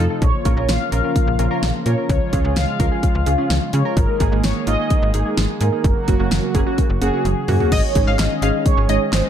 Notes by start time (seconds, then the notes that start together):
Already playing: C3 F3 A3 D#4
0.10 D#4 F4 A4
0.22 A#1 C#3 A#3 F4 C#5, kick, closed hi-hat
0.45 A#1 C#4 F4 A#4, kick, closed hi-hat
0.57 A#1 C#4 F4 A#4
0.69 A#1 F5, snare, closed hi-hat
0.92 A#1 C#4 F4 A#4 F5, closed hi-hat
1.04 C#4 F4 A#4
1.16 kick, closed hi-hat
1.27 A#1
1.39 A#1 C#4 F4 A#4, closed hi-hat
1.51 C#4 F4 A#4
1.63 A#1, snare, closed hi-hat
1.86 A#2 C#4 F4 A#4 C#5, closed hi-hat
1.98 C#4 F4 A#4
2.09 C#2 G#3 F4 C#5, kick, closed hi-hat
2.33 C#2 C#4 F4 G#4, kick, closed hi-hat
2.44 C#2 C#4 F4 G#4
2.56 C#2 F5, snare, closed hi-hat
2.79 C#2 C#4 F4 A#4 F5, kick, closed hi-hat
2.91 C#4 F4 G#4
3.03 kick, closed hi-hat
3.15 C#2
3.26 C#2 C#4 F4 G#4, closed hi-hat
3.38 C#4 F4 G#4
3.50 C#2, snare, closed hi-hat
3.73 C#3 C#4 F4 G#4 C#5, closed hi-hat
3.85 C#4 F4 A#4
3.97 G#1 D#3 G#3 A#3 G#4 A#4, kick, closed hi-hat
4.20 G#1 A#3 D#4 G#4, kick, closed hi-hat
4.32 G#1 A#3 D#4 G#4
4.44 G#1 C#5, snare, closed hi-hat
4.67 G#1 A#3 D#4 F4 D#5, closed hi-hat
4.79 A#3 D#4 G#4
4.90 kick, closed hi-hat
5.02 G#1
5.14 G#1 A#3 D#4 G#4, closed hi-hat
5.25 A#3 D#4 G#4
5.37 G#1, snare, closed hi-hat
5.61 G#2 A#3 D#4 G#4 A#4, closed hi-hat
5.72 A#3 D#4 G#4
5.84 F#1 C#3 F#3 A#3 F#4, kick, closed hi-hat
6.08 F#1 A#3 C#4 F#4, kick, closed hi-hat
6.19 F#1 A#3 C#4 F#4
6.31 F#1, snare, closed hi-hat
6.55 F#1 A#3 C#4 G#4, kick, closed hi-hat
6.66 A#3 C#4 F#4
6.78 kick, closed hi-hat
6.90 F#1
7.02 F#1 A#3 C#4 F#4 G#4, closed hi-hat
7.13 A#3 C#4 F#4
7.25 F#1, closed hi-hat, high tom
7.48 F#2 A#3 C#4 F#4, mid tom, open hi-hat
7.60 A#3 C#4 F#4, floor tom
7.72 G#1 D#3 G#3 C#4 G#4 C#5 D#5, kick, closed hi-hat, crash
7.95 G#1 G#3 C#4 D#4 G#4, kick, closed hi-hat
8.07 G#1 F5
8.19 G#1 D#5, snare, clap, closed hi-hat
8.42 G#1 G#3 C#4 D#4 G#4 F5, closed hi-hat
8.66 C#5, kick, closed hi-hat
8.77 G#1
8.89 G#1 G#3 C#4 D#4 G#4 C#5 D#5, closed hi-hat
9.12 G#1 C5, snare, clap, closed hi-hat